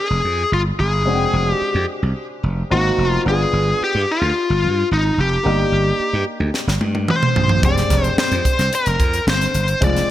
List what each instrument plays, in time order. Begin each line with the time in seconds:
Already playing: grand piano G#3 C4 D4 G5
0.00 lead electric guitar G#4
0.10 slap bass F1
0.24 slap bass F2
0.52 slap bass G1, lead electric guitar F4
0.79 slap bass G1, lead electric guitar G#4
1.05 slap bass F1, grand piano G#3 C4 D4 F#4
1.14 grand piano G5
1.33 slap bass F1
1.50 lead electric guitar G4
1.62 muted slap bass stroke
1.75 slap bass F2
2.03 slap bass C2
2.43 slap bass F1
2.70 slap bass G#1, grand piano A#3 C4 D#4 F#4, lead electric guitar F#4
2.98 slap bass F1
3.09 lead electric guitar F4
3.25 slap bass G1, grand piano B3 D4 F4 G#4, lead electric guitar G#4
3.53 slap bass G1
3.81 lead electric guitar G4, muted slap bass stroke
3.95 slap bass G2
4.11 lead electric guitar F4
4.21 slap bass D2
4.50 slap bass G1
4.64 slap bass G2
4.91 slap bass G#1, lead electric guitar D#4
5.18 slap bass F1, lead electric guitar G4
5.43 slap bass G1, grand piano A#3 D4 D#4 G4
5.72 slap bass G1
6.00 muted slap bass stroke
6.13 slap bass G2
6.40 slap bass D2
6.54 snare
6.67 slap bass G1, snare
6.81 slap bass G2, high tom
6.95 high tom
7.08 lead electric guitar C5, mid tom
7.23 mid tom
7.36 slap bass A#1, floor tom
7.49 floor tom
7.63 slap bass F1, grand piano G#3 C4 D4 G4, lead electric guitar D5, kick, closed hi-hat
7.78 snare, closed hi-hat
7.90 slap bass F1, kick, snare, closed hi-hat
8.04 lead electric guitar C5, closed hi-hat
8.18 lead electric guitar C5, muted slap bass stroke, snare
8.32 slap bass F2, closed hi-hat
8.45 kick, closed hi-hat
8.59 slap bass C2, snare, closed hi-hat
8.73 lead electric guitar A#4, closed hi-hat
8.86 slap bass F1, closed hi-hat
9.00 slap bass F2, kick, closed hi-hat
9.14 closed hi-hat
9.27 slap bass G1, lead electric guitar C5, snare
9.41 closed hi-hat
9.54 slap bass G1, closed hi-hat
9.68 closed hi-hat
9.81 slap bass F1, grand piano G#3 C4 D4 F4, lead electric guitar D5, kick, closed hi-hat
9.97 snare, closed hi-hat